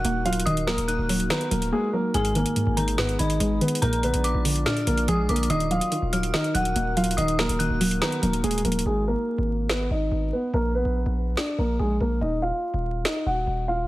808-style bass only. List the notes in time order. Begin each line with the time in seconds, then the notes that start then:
0.04 D#1
0.46 D#1
0.78 D#1
0.99 D#1
1.51 D#1
2.14 G#1
2.67 G#1
3.19 G#1
3.40 G#1
3.82 A#1
4.14 A#1
4.34 A#1
4.87 A#1
5.08 A#1
5.29 A#1
5.50 D#1
6.02 D#1
6.55 D#1
6.76 D#1
7.18 D#1
7.49 D#1
7.70 D#1
8.23 D#1
8.44 D#1
8.65 D#1
8.86 G#1
9.38 G#1
9.91 G#1
10.12 G#1
10.54 A#1
10.85 A#1
11.06 A#1
11.58 A#1
11.79 A#1
12.00 A#1
12.21 D#1
12.74 D#1
13.26 D#1
13.47 D#1